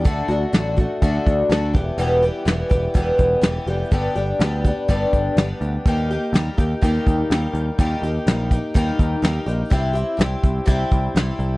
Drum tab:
HH |xxxxxxxx|xxxxxxxx|xxxxxxxx|xxxxxxxx|
SD |--o---o-|--o---o-|--o---o-|--o---o-|
BD |o--ooo-o|---ooo--|o--ooo--|o--ooo--|

HH |xxxxxxxx|xxxxxxxx|
SD |--o---o-|--o---o-|
BD |o--ooo--|o--ooo--|